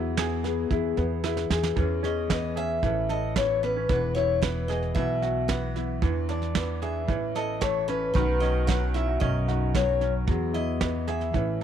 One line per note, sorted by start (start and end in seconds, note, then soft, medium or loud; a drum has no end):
0.00 0.67 E2 medium
0.00 1.76 E2 medium
0.00 0.16 E3 medium
0.00 1.77 F#3 medium
0.00 0.98 B3 medium
0.00 0.69 E4 medium
0.00 0.44 G#4 medium
0.17 1.76 E3 medium
0.17 1.49 G#4 medium
0.17 snare medium
0.44 0.96 B3 soft
0.44 0.70 G#4 medium
0.44 snare soft
0.71 0.96 E2 medium
0.71 1.22 E4 medium
0.71 1.24 G#4 medium
0.71 kick medium
0.71 snare soft
0.97 1.48 E2 medium
0.97 1.82 B3 medium
0.97 1.74 B3 medium
0.97 snare soft
1.24 1.82 E4 medium
1.24 1.50 G#4 medium
1.24 snare soft
1.37 snare soft
1.50 1.76 E2 medium
1.50 1.82 G#4 medium
1.50 1.74 G#4 medium
1.50 snare medium
1.63 snare medium
1.76 2.79 E2 medium
1.76 2.83 E2 medium
1.76 2.81 E3 medium
1.76 2.29 E3 medium
1.76 2.56 C#4 medium
1.76 2.02 G#4 medium
1.76 kick medium
1.76 snare soft
2.03 2.88 C#4 soft
2.03 2.80 G#4 medium
2.03 2.30 D#5 medium
2.03 snare soft
2.29 2.83 E3 medium
2.29 2.89 B3 soft
2.29 2.57 D#5 medium
2.29 kick medium
2.29 snare medium
2.56 2.81 C#4 soft
2.56 2.88 G#4 medium
2.56 3.06 E5 medium
2.56 snare soft
2.83 3.85 A1 medium
2.83 3.86 A2 medium
2.83 3.88 E3 medium
2.83 3.36 E3 soft
2.83 3.62 C#4 soft
2.83 3.10 E4 medium
2.83 3.88 A4 medium
2.83 kick medium
2.83 snare soft
3.09 4.16 E4 soft
3.09 3.95 A4 medium
3.09 3.35 D#5 medium
3.09 snare soft
3.36 4.42 E3 medium
3.36 3.61 B3 medium
3.36 3.63 C#5 medium
3.36 kick medium
3.36 snare medium
3.63 3.75 B3 medium
3.63 3.87 C#4 medium
3.63 3.88 B4 medium
3.63 snare soft
3.76 3.95 C#4 soft
3.89 4.92 E1 loud
3.89 4.96 E2 medium
3.89 4.95 E3 medium
3.89 4.69 B3 medium
3.89 4.14 B4 medium
3.89 kick loud
3.89 snare soft
4.15 5.01 E4 medium
4.15 5.24 E4 medium
4.15 4.40 C#5 medium
4.15 snare soft
4.42 5.48 E3 medium
4.42 5.01 B3 medium
4.42 4.70 B4 medium
4.42 kick medium
4.42 snare medium
4.68 4.93 B3 soft
4.68 5.01 G#4 medium
4.68 4.93 D#5 medium
4.68 snare soft
4.82 snare soft
4.95 5.98 B1 medium
4.95 5.49 B2 medium
4.95 6.01 E3 medium
4.95 5.76 B3 medium
4.95 5.48 E5 medium
4.95 kick medium
4.95 snare soft
5.22 6.00 E4 medium
5.22 6.08 F#4 medium
5.22 snare soft
5.48 6.54 E3 soft
5.48 6.08 B3 medium
5.48 5.86 F#5 medium
5.48 kick medium
5.48 snare medium
5.76 6.00 B3 medium
5.76 6.08 E4 soft
5.76 snare soft
6.02 7.05 E2 loud
6.02 7.07 E2 medium
6.02 7.07 E3 medium
6.02 6.81 D4 medium
6.02 kick loud
6.02 snare soft
6.29 7.14 D4 medium
6.29 7.06 E4 medium
6.29 6.82 D5 medium
6.29 snare soft
6.42 snare soft
6.55 7.61 E3 medium
6.55 7.14 B3 medium
6.55 kick medium
6.55 snare medium
6.82 7.05 D4 medium
6.82 7.14 G#4 medium
6.82 7.35 E5 medium
6.82 snare soft
7.07 8.11 A1 medium
7.07 8.11 A2 medium
7.07 8.15 E3 medium
7.07 7.87 C#4 soft
7.07 kick medium
7.07 snare soft
7.35 8.12 E4 medium
7.35 8.21 A4 medium
7.35 7.60 D#5 medium
7.35 snare soft
7.61 8.15 E3 medium
7.61 8.20 A3 medium
7.61 7.87 C#5 medium
7.61 kick medium
7.61 snare medium
7.88 8.12 C#4 medium
7.88 8.21 C#4 soft
7.88 8.12 B4 medium
7.88 snare soft
8.14 9.18 B1 loud
8.14 9.22 B2 medium
8.14 10.28 D#3 medium
8.14 8.67 F#3 medium
8.14 8.95 C#4 medium
8.14 8.42 D#4 medium
8.14 8.39 B4 medium
8.14 kick medium
8.14 snare soft
8.18 10.26 F#4 medium
8.40 9.20 C#4 medium
8.40 9.48 D#4 medium
8.40 8.67 D#5 medium
8.40 snare soft
8.67 9.73 F#3 medium
8.67 9.73 B3 medium
8.67 8.93 F#5 medium
8.67 kick medium
8.67 snare medium
8.94 10.01 C#4 soft
8.94 9.07 E4 medium
8.94 9.20 E5 medium
8.94 snare soft
9.08 9.47 F#4 soft
9.20 10.24 B1 medium
9.20 10.25 F#2 medium
9.20 10.00 C#4 medium
9.20 9.74 D#5 medium
9.20 kick medium
9.20 snare soft
9.48 10.25 D#4 medium
9.48 10.33 F#4 medium
9.48 snare soft
9.74 10.25 F#3 medium
9.74 10.34 B3 soft
9.74 10.12 C#5 medium
9.74 kick medium
9.74 snare medium
10.01 10.33 C#4 soft
10.01 10.25 C#4 medium
10.01 snare soft
10.27 11.33 E2 medium
10.27 11.30 E2 medium
10.27 10.79 E3 medium
10.27 11.34 F#3 medium
10.27 11.07 B3 medium
10.27 10.53 E4 medium
10.27 11.33 G#4 medium
10.27 kick medium
10.27 snare soft
10.54 11.39 E4 medium
10.54 11.31 E4 medium
10.54 11.07 D#5 medium
10.54 snare soft
10.80 11.63 E3 medium
10.80 11.40 B3 medium
10.80 kick medium
10.80 snare medium
11.07 11.34 B3 medium
11.07 11.40 G#4 medium
11.07 11.63 E5 medium
11.07 snare soft
11.21 snare soft
11.33 11.63 A1 medium
11.33 11.63 A2 medium
11.33 11.63 E3 medium
11.33 11.63 C#4 medium
11.33 kick medium
11.33 snare soft